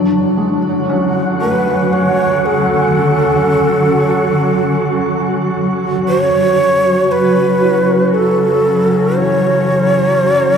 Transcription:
0.00 6.08 D3 medium
0.00 0.59 E3 soft
0.00 10.57 F#3 medium
0.00 6.09 F#4 medium
0.00 10.57 F#4 medium
0.00 6.09 F#5 medium
0.32 6.07 C#4 medium
0.38 1.36 G#3 soft
0.90 4.72 C#4 medium
1.41 5.24 A3 medium
1.41 1.95 B4 medium
1.93 2.47 C#5 medium
2.46 5.56 A4 medium
4.00 7.82 G#5 medium
6.08 10.57 C#3 medium
6.08 10.57 F#3 medium
6.08 7.13 C#5 loud
6.59 7.57 F#4 soft
7.12 8.16 B4 medium
7.62 10.57 E4 medium
8.14 9.19 A4 medium
9.17 10.57 E3 soft
9.17 10.57 C#5 medium

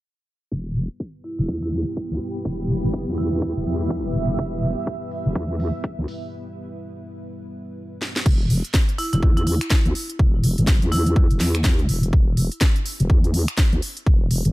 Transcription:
0.52 0.88 E1 medium
0.52 8.22 G3 medium
0.52 6.32 B3 medium
0.52 8.22 B3 medium
0.52 8.22 E4 medium
0.52 8.22 B4 medium
0.52 kick loud
0.68 6.32 G4 medium
0.76 open hi-hat medium
1.00 kick loud
1.24 1.33 E4 medium
1.24 open hi-hat medium
1.39 1.47 E1 medium
1.39 1.45 E4 medium
1.48 1.85 E2 medium
1.48 kick loud
1.63 1.69 E4 medium
1.73 1.82 E4 medium
1.73 open hi-hat loud
1.97 kick loud
2.09 2.19 D2 medium
2.09 6.32 E5 medium
2.21 open hi-hat medium
2.45 2.81 E1 medium
2.45 kick loud
2.69 open hi-hat medium
2.84 3.06 G1 medium
2.94 kick loud
3.08 3.54 E2 medium
3.18 3.56 E4 medium
3.18 open hi-hat loud
3.42 kick loud
3.56 3.65 E1 medium
3.66 4.13 E2 medium
3.66 open hi-hat loud
3.90 kick loud
4.15 4.37 E1 medium
4.15 open hi-hat loud
4.39 4.75 E1 medium
4.39 kick loud
4.63 open hi-hat loud
4.87 kick loud
5.11 open hi-hat loud
5.26 5.34 E1 medium
5.35 5.72 E2 loud
5.35 kick loud
5.60 open hi-hat loud
5.84 kick loud
5.98 6.07 D2 loud
6.08 open hi-hat loud
8.02 snare medium
8.16 snare medium
8.26 8.62 E1 medium
8.26 kick loud
8.26 crash medium
8.50 open hi-hat loud
8.64 closed hi-hat medium
8.74 kick loud
8.74 snare loud
8.89 closed hi-hat soft
8.98 9.08 E4 medium
8.98 open hi-hat loud
9.13 9.21 E1 medium
9.13 9.19 E4 medium
9.13 closed hi-hat medium
9.23 9.59 E2 loud
9.23 kick loud
9.37 9.43 E4 medium
9.37 closed hi-hat soft
9.47 9.56 E4 medium
9.47 open hi-hat loud
9.61 finger snap medium
9.61 closed hi-hat medium
9.70 kick loud
9.70 snare loud
9.85 9.94 D2 loud
9.85 closed hi-hat soft
9.95 open hi-hat loud
10.10 closed hi-hat medium
10.19 10.56 E1 medium
10.19 kick loud
10.44 open hi-hat loud
10.58 10.80 G1 medium
10.58 closed hi-hat medium
10.67 kick loud
10.67 snare loud
10.82 11.28 E2 medium
10.82 closed hi-hat soft
10.92 11.31 E4 medium
10.92 open hi-hat loud
11.06 closed hi-hat medium
11.16 kick loud
11.31 11.39 E1 medium
11.31 closed hi-hat soft
11.40 11.87 E2 medium
11.40 snare medium
11.40 open hi-hat loud
11.55 finger snap medium
11.55 closed hi-hat medium
11.64 kick loud
11.64 snare loud
11.79 closed hi-hat soft
11.89 12.11 E1 medium
11.89 open hi-hat loud
12.03 closed hi-hat medium
12.13 12.49 E1 medium
12.13 kick loud
12.37 open hi-hat loud
12.52 closed hi-hat medium
12.61 kick loud
12.61 snare loud
12.76 closed hi-hat soft
12.86 open hi-hat loud
13.00 13.08 E1 loud
13.00 closed hi-hat medium
13.10 13.46 E2 loud
13.10 kick loud
13.24 closed hi-hat soft
13.34 open hi-hat loud
13.48 finger snap medium
13.48 closed hi-hat medium
13.58 kick loud
13.58 snare loud
13.72 13.81 D2 loud
13.72 closed hi-hat soft
13.82 open hi-hat loud
13.97 closed hi-hat medium
14.06 14.43 E1 medium
14.06 kick loud
14.31 open hi-hat loud
14.45 14.52 G1 loud
14.45 closed hi-hat medium

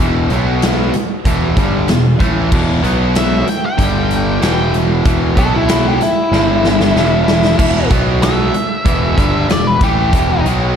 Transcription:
0.00 0.28 E1 medium
0.00 0.29 E2 loud
0.00 0.29 B2 loud
0.00 0.32 E3 loud
0.30 0.89 B1 medium
0.30 0.93 B2 medium
0.30 0.93 F#3 medium
0.30 0.93 B3 medium
0.30 closed hi-hat medium
0.62 snare loud
0.62 closed hi-hat loud
0.93 muted picked electric bass stroke soft
0.93 muted distorted electric guitar stroke medium
0.93 closed hi-hat medium
1.25 1.54 E1 loud
1.25 1.56 E2 medium
1.25 1.56 B2 medium
1.25 1.57 E3 loud
1.25 kick loud
1.25 closed hi-hat loud
1.57 1.86 G1 medium
1.57 1.88 G2 medium
1.57 1.88 D3 medium
1.57 1.88 G3 medium
1.57 kick loud
1.57 closed hi-hat medium
1.88 2.18 E1 medium
1.88 2.14 E2 medium
1.88 2.14 B2 medium
1.88 snare medium
1.88 closed hi-hat medium
2.19 2.49 A1 medium
2.19 2.50 A2 medium
2.19 2.50 E3 medium
2.19 2.51 A3 medium
2.19 kick medium
2.19 closed hi-hat medium
2.52 2.81 E1 medium
2.52 2.82 E2 loud
2.52 2.81 B2 medium
2.52 2.83 E3 loud
2.52 kick loud
2.52 crash loud
2.82 3.43 B1 loud
2.82 3.45 B2 medium
2.82 3.45 F#3 medium
2.82 3.46 B3 medium
2.82 closed hi-hat medium
3.15 3.47 E5 loud
3.15 snare loud
3.15 closed hi-hat medium
3.46 3.63 G5 medium
3.46 muted distorted electric guitar stroke medium
3.46 muted picked electric bass stroke soft
3.46 closed hi-hat medium
3.66 4.41 G5 medium
3.77 4.38 G1 loud
3.77 4.40 G2 loud
3.77 4.40 D3 medium
3.77 4.41 G3 loud
3.77 kick medium
3.77 closed hi-hat medium
4.11 closed hi-hat medium
4.41 5.01 E1 medium
4.41 5.03 E2 loud
4.41 5.04 B2 loud
4.41 5.04 E3 loud
4.41 4.73 G5 loud
4.41 snare medium
4.41 closed hi-hat medium
4.74 closed hi-hat medium
5.05 5.35 E1 loud
5.05 5.36 E2 medium
5.05 5.35 B2 loud
5.05 5.36 E3 medium
5.05 kick loud
5.05 closed hi-hat loud
5.36 5.96 B1 loud
5.36 5.99 B2 medium
5.36 5.99 F#3 medium
5.36 6.00 B3 medium
5.36 5.53 A4 loud
5.36 kick loud
5.36 closed hi-hat medium
5.56 5.85 E4 medium
5.68 snare loud
5.68 closed hi-hat loud
5.88 6.02 G4 medium
6.01 7.88 E4 loud
6.01 muted picked electric bass stroke soft
6.01 muted distorted electric guitar stroke medium
6.01 snare soft
6.01 closed hi-hat medium
6.32 6.91 G1 medium
6.32 6.94 G2 medium
6.32 6.95 D3 loud
6.32 6.95 G3 loud
6.32 snare medium
6.65 snare medium
6.81 snare medium
6.94 7.54 E1 medium
6.94 7.57 E2 medium
6.94 7.58 B2 loud
6.94 7.58 E3 loud
6.94 snare medium
7.28 snare loud
7.44 snare medium
7.58 7.89 E1 medium
7.58 7.89 E2 medium
7.58 7.90 B2 loud
7.58 7.90 E3 loud
7.58 kick loud
7.58 crash loud
7.91 8.50 B1 loud
7.91 8.53 B2 medium
7.91 8.54 F#3 medium
7.91 8.54 B3 medium
7.91 kick loud
7.91 closed hi-hat medium
8.22 9.46 E5 loud
8.22 snare loud
8.22 closed hi-hat loud
8.54 muted picked electric bass stroke soft
8.54 muted distorted electric guitar stroke medium
8.54 closed hi-hat medium
8.85 9.15 E1 medium
8.85 9.16 E2 medium
8.85 9.17 B2 medium
8.85 9.17 E3 loud
8.85 kick loud
8.85 closed hi-hat medium
9.18 9.47 G1 medium
9.18 9.49 G2 medium
9.18 9.49 D3 medium
9.18 9.49 G3 loud
9.18 kick medium
9.18 closed hi-hat medium
9.49 9.79 E1 medium
9.49 9.75 E2 medium
9.49 9.75 B2 medium
9.49 9.67 D5 loud
9.49 snare loud
9.49 closed hi-hat medium
9.67 9.82 B4 medium
9.81 10.10 A1 medium
9.81 10.13 A2 medium
9.81 10.12 E3 medium
9.81 10.13 A3 loud
9.81 10.44 G4 loud
9.81 kick loud
9.81 closed hi-hat medium
10.12 10.42 E1 medium
10.12 10.43 E2 medium
10.12 10.44 B2 medium
10.12 10.44 E3 loud
10.12 kick loud
10.12 closed hi-hat loud
10.44 10.76 B1 medium
10.44 10.76 B2 medium
10.44 10.76 F#3 loud
10.44 10.76 B3 medium
10.44 closed hi-hat medium

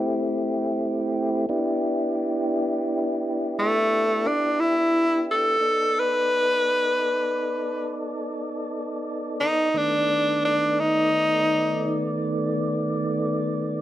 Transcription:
0.00 1.46 A3 medium
0.00 1.46 C4 medium
0.00 1.46 E4 medium
0.00 1.46 G4 medium
1.49 5.57 B3 medium
1.49 5.57 D4 medium
1.49 5.57 E4 medium
1.49 5.58 G4 medium
3.59 4.29 A3 loud
4.27 4.62 D4 medium
4.60 5.26 E4 medium
5.31 6.01 A4 loud
5.60 9.69 B3 medium
5.60 9.69 D#4 medium
5.60 9.69 A4 medium
5.60 9.69 D5 medium
6.00 8.00 B4 loud
9.41 9.79 D#4 loud
9.74 13.81 D#3 medium
9.74 13.81 A3 soft
9.74 13.81 B3 soft
9.74 10.42 D4 medium
9.74 13.81 D5 medium
10.45 10.81 D4 medium
10.80 12.12 D#4 loud

